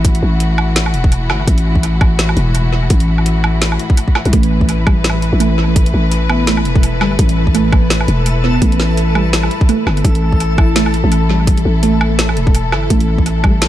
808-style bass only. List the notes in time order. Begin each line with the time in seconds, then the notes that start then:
Already playing: A1
0.23 A1
0.94 E1
1.30 G1
1.48 A1
2.37 E1
2.90 A1
4.26 B1
4.33 A1
5.33 A1
5.94 A1
6.65 E1
7.01 G1
7.19 A1
8.08 E1
8.62 A1
9.87 G1
10.04 A1
11.04 A1
11.65 A1
12.37 E1
12.72 G1
12.90 A1